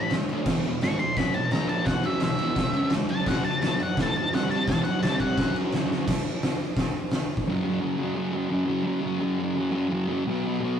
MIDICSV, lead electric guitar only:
0, 0, Header, 1, 2, 480
1, 0, Start_track
1, 0, Tempo, 349854
1, 634, Time_signature, 4, 2, 24, 8
1, 14813, End_track
2, 0, Start_track
2, 0, Title_t, "Lead electric guitar"
2, 0, Program_c, 0, 29
2, 0, Note_on_c, 0, 83, 90
2, 174, Note_off_c, 0, 83, 0
2, 1145, Note_on_c, 0, 85, 104
2, 1356, Note_off_c, 0, 85, 0
2, 1361, Note_on_c, 0, 84, 88
2, 1606, Note_off_c, 0, 84, 0
2, 1606, Note_on_c, 0, 83, 97
2, 1834, Note_off_c, 0, 83, 0
2, 1853, Note_on_c, 0, 81, 98
2, 2079, Note_off_c, 0, 81, 0
2, 2089, Note_on_c, 0, 82, 99
2, 2311, Note_off_c, 0, 82, 0
2, 2317, Note_on_c, 0, 81, 81
2, 2544, Note_on_c, 0, 78, 88
2, 2551, Note_off_c, 0, 81, 0
2, 2819, Note_off_c, 0, 78, 0
2, 2819, Note_on_c, 0, 76, 101
2, 3043, Note_off_c, 0, 76, 0
2, 3068, Note_on_c, 0, 76, 111
2, 3987, Note_off_c, 0, 76, 0
2, 4260, Note_on_c, 0, 81, 107
2, 4485, Note_off_c, 0, 81, 0
2, 4503, Note_on_c, 0, 78, 97
2, 4724, Note_off_c, 0, 78, 0
2, 4729, Note_on_c, 0, 81, 104
2, 4959, Note_off_c, 0, 81, 0
2, 4975, Note_on_c, 0, 81, 101
2, 5202, Note_off_c, 0, 81, 0
2, 5254, Note_on_c, 0, 78, 95
2, 5462, Note_off_c, 0, 78, 0
2, 5521, Note_on_c, 0, 81, 108
2, 5705, Note_off_c, 0, 81, 0
2, 5721, Note_on_c, 0, 81, 95
2, 5936, Note_off_c, 0, 81, 0
2, 5963, Note_on_c, 0, 78, 95
2, 6176, Note_off_c, 0, 78, 0
2, 6181, Note_on_c, 0, 81, 92
2, 6406, Note_off_c, 0, 81, 0
2, 6431, Note_on_c, 0, 81, 114
2, 6631, Note_off_c, 0, 81, 0
2, 6637, Note_on_c, 0, 78, 101
2, 6873, Note_off_c, 0, 78, 0
2, 6900, Note_on_c, 0, 81, 99
2, 7125, Note_off_c, 0, 81, 0
2, 7145, Note_on_c, 0, 78, 97
2, 7601, Note_off_c, 0, 78, 0
2, 14813, End_track
0, 0, End_of_file